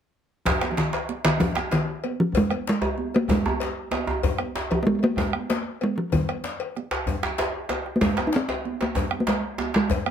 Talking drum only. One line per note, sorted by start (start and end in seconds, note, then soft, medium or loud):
0.46 0.70 F3 medium
0.72 0.79 F3 soft
0.78 1.24 D#3 medium
1.25 1.32 D#3 medium
1.40 1.74 F3 medium
1.73 2.04 D#3 medium
2.20 2.39 F3 medium
2.37 2.68 G#3 medium
2.69 3.17 G#3 loud
3.16 3.30 A#3 medium
3.31 4.05 G#3 medium
4.72 4.84 F3 medium
4.83 5.05 G#3 medium
4.83 4.88 A#3 medium
5.04 5.20 A#3 medium
5.18 5.52 G#3 medium
5.50 5.85 A#3 medium
5.84 5.97 G#3 medium
5.98 6.05 F3 medium
6.13 6.72 D#3 medium
7.96 8.03 A#3 medium
8.01 8.29 G#3 medium
8.27 8.38 D#4 medium
8.36 8.84 C4 medium
8.82 9.20 A#3 medium
9.20 9.30 A#3 medium
9.28 9.75 G#3 medium
9.76 10.11 G#3 medium